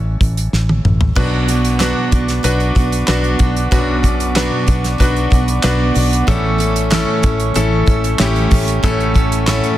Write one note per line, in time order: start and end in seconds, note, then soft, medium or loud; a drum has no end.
0.00 0.15 A1 medium
0.00 1.18 E3 soft
0.00 1.19 A3 soft
0.00 0.49 C#4 medium
0.00 1.18 E4 medium
0.00 0.47 A4 medium
0.00 1.18 C#5 medium
0.21 0.47 A1 medium
0.21 kick medium
0.21 closed hi-hat medium
0.37 closed hi-hat soft
0.53 0.79 A1 medium
0.53 snare soft
0.69 high tom medium
0.85 1.11 A1 medium
0.85 mid tom medium
1.01 floor tom medium
1.15 1.92 B1 medium
1.15 1.48 B2 medium
1.15 2.08 B2 medium
1.15 1.48 F#3 medium
1.15 1.49 B3 medium
1.15 1.64 D4 medium
1.15 1.48 D4 medium
1.15 1.64 F#4 medium
1.15 1.46 F#4 medium
1.15 6.24 B4 medium
1.15 1.64 B4 medium
1.15 6.24 D5 medium
1.15 6.24 F#5 medium
1.15 6.24 D6 medium
1.15 kick loud
1.15 crash medium
1.48 1.80 B3 soft
1.48 1.80 D4 medium
1.48 1.80 F#4 medium
1.48 closed hi-hat medium
1.65 closed hi-hat soft
1.79 2.12 B2 medium
1.79 2.12 F#3 medium
1.79 2.13 B3 medium
1.79 2.28 D4 medium
1.79 2.12 D4 medium
1.79 2.28 F#4 medium
1.79 2.10 F#4 medium
1.79 2.28 B4 medium
1.79 snare medium
1.79 clap medium
1.79 closed hi-hat medium
2.11 2.39 B1 medium
2.11 2.43 B3 soft
2.11 2.44 D4 soft
2.11 2.44 F#4 medium
2.11 kick medium
2.11 closed hi-hat medium
2.28 snare soft
2.28 closed hi-hat soft
2.43 2.71 B1 medium
2.43 2.76 F#3 medium
2.43 2.76 B3 medium
2.43 2.92 D4 medium
2.43 2.76 D4 medium
2.43 2.91 F#4 medium
2.43 2.74 F#4 medium
2.43 2.91 B4 medium
2.43 closed hi-hat medium
2.60 closed hi-hat soft
2.75 3.02 B1 medium
2.75 3.07 B3 soft
2.75 3.08 D4 soft
2.75 3.08 F#4 medium
2.75 kick medium
2.75 closed hi-hat medium
2.92 closed hi-hat medium
3.07 3.34 B1 medium
3.07 3.40 B2 medium
3.07 3.40 F#3 medium
3.07 3.40 B3 medium
3.07 3.55 D4 medium
3.07 3.40 D4 medium
3.07 3.55 F#4 medium
3.07 3.38 F#4 medium
3.07 3.56 B4 medium
3.07 snare loud
3.07 clap medium
3.07 closed hi-hat medium
3.24 closed hi-hat soft
3.39 3.66 B1 medium
3.39 3.71 B3 soft
3.39 3.72 D4 medium
3.39 3.72 F#4 medium
3.39 kick medium
3.39 closed hi-hat medium
3.56 closed hi-hat soft
3.71 4.48 B1 medium
3.71 4.04 B2 medium
3.71 4.64 B2 medium
3.71 4.04 F#3 medium
3.71 4.04 B3 medium
3.71 3.79 C#4 medium
3.71 4.04 D4 medium
3.71 4.19 F#4 medium
3.71 4.02 F#4 medium
3.71 4.19 B4 medium
3.71 kick loud
3.71 closed hi-hat medium
3.78 4.23 D4 medium
4.03 4.35 B3 soft
4.03 4.36 D4 medium
4.03 4.36 F#4 medium
4.03 kick medium
4.03 closed hi-hat medium
4.20 closed hi-hat medium
4.35 4.68 B2 medium
4.35 4.68 F#3 medium
4.35 4.68 B3 medium
4.35 4.83 D4 medium
4.35 4.67 D4 medium
4.35 4.83 F#4 medium
4.35 4.65 F#4 loud
4.35 4.83 B4 medium
4.35 snare medium
4.35 clap medium
4.35 closed hi-hat medium
4.67 4.94 B1 medium
4.67 4.99 B3 soft
4.67 4.99 D4 medium
4.67 4.99 F#4 medium
4.67 kick medium
4.67 closed hi-hat medium
4.84 snare soft
4.84 closed hi-hat soft
4.98 5.26 B1 medium
4.98 5.31 F#3 medium
4.98 5.32 B3 medium
4.98 5.47 D4 medium
4.98 5.31 D4 medium
4.98 5.47 F#4 medium
4.98 5.29 F#4 medium
4.98 5.47 B4 medium
4.98 kick medium
4.98 closed hi-hat loud
5.16 closed hi-hat soft
5.30 5.58 B1 medium
5.30 5.63 B3 soft
5.30 5.63 D4 soft
5.30 5.63 F#4 medium
5.30 kick medium
5.30 closed hi-hat medium
5.48 closed hi-hat medium
5.63 5.90 B1 medium
5.63 5.95 B2 medium
5.63 5.96 F#3 medium
5.63 5.96 B3 medium
5.63 6.11 D4 medium
5.63 5.95 D4 medium
5.63 6.11 F#4 medium
5.63 5.93 F#4 medium
5.63 6.11 B4 medium
5.63 snare medium
5.63 clap medium
5.63 closed hi-hat medium
5.94 6.22 B1 medium
5.94 6.28 B3 soft
5.94 6.28 D4 medium
5.94 6.27 F#4 medium
5.94 open hi-hat medium
6.13 closed hi-hat soft
6.27 7.04 A1 loud
6.27 6.59 A2 medium
6.27 7.20 A2 medium
6.27 6.60 E3 medium
6.27 6.60 A3 medium
6.27 6.75 C#4 medium
6.27 6.59 C#4 medium
6.27 6.75 E4 medium
6.27 9.78 A4 medium
6.27 6.75 A4 medium
6.27 6.57 A4 medium
6.27 9.78 C#5 medium
6.27 8.81 E5 medium
6.27 9.78 C#6 medium
6.27 kick loud
6.27 closed hi-hat medium
6.58 6.90 A3 soft
6.58 6.91 C#4 medium
6.58 6.91 A4 medium
6.58 closed hi-hat medium
6.76 closed hi-hat medium
6.90 7.23 A2 medium
6.90 7.24 E3 medium
6.90 7.24 A3 loud
6.90 7.39 C#4 medium
6.90 7.23 C#4 loud
6.90 7.39 E4 medium
6.90 7.39 A4 medium
6.90 7.21 A4 medium
6.90 snare medium
6.90 clap medium
6.90 closed hi-hat medium
7.22 7.50 A1 loud
7.22 7.55 C#4 medium
7.22 7.55 A4 medium
7.22 kick medium
7.22 closed hi-hat medium
7.40 closed hi-hat medium
7.54 7.82 A1 medium
7.54 7.87 E3 medium
7.54 7.88 A3 medium
7.54 8.03 C#4 medium
7.54 7.87 C#4 medium
7.54 8.03 E4 medium
7.54 8.03 A4 loud
7.54 7.85 A4 medium
7.54 closed hi-hat medium
7.86 8.14 A1 medium
7.86 8.18 A3 soft
7.86 8.19 C#4 soft
7.86 8.19 A4 medium
7.86 kick medium
7.86 closed hi-hat medium
8.04 closed hi-hat soft
8.18 8.46 A1 medium
8.18 8.51 A2 medium
8.18 8.51 E3 medium
8.18 8.52 A3 medium
8.18 8.51 C#4 medium
8.18 8.67 C#4 medium
8.18 8.67 E4 medium
8.18 8.67 G4 loud
8.18 8.49 A4 medium
8.18 snare loud
8.18 clap medium
8.18 closed hi-hat medium
8.36 closed hi-hat soft
8.50 8.78 A1 medium
8.50 8.83 A3 medium
8.50 8.83 C#4 medium
8.50 8.83 A4 medium
8.50 kick medium
8.50 open hi-hat medium
8.68 closed hi-hat medium
8.83 9.60 A1 loud
8.83 9.15 A2 medium
8.83 9.76 A2 medium
8.83 9.16 E3 medium
8.83 9.16 A3 medium
8.83 9.31 C#4 medium
8.83 9.15 C#4 medium
8.83 9.31 E4 medium
8.83 9.31 A4 medium
8.83 9.13 A4 loud
8.83 9.78 F#5 medium
8.83 kick loud
8.83 closed hi-hat medium
9.00 closed hi-hat soft
9.14 9.47 A3 soft
9.14 9.47 C#4 medium
9.14 9.47 A4 medium
9.14 kick medium
9.14 closed hi-hat medium
9.32 closed hi-hat medium
9.47 9.78 A2 medium
9.47 9.78 E3 medium
9.47 9.78 A3 medium
9.47 9.78 C#4 medium
9.47 9.78 C#4 loud
9.47 9.78 E4 medium
9.47 9.78 A4 medium
9.47 9.77 A4 medium
9.47 snare medium
9.47 clap medium
9.47 closed hi-hat medium
9.64 closed hi-hat soft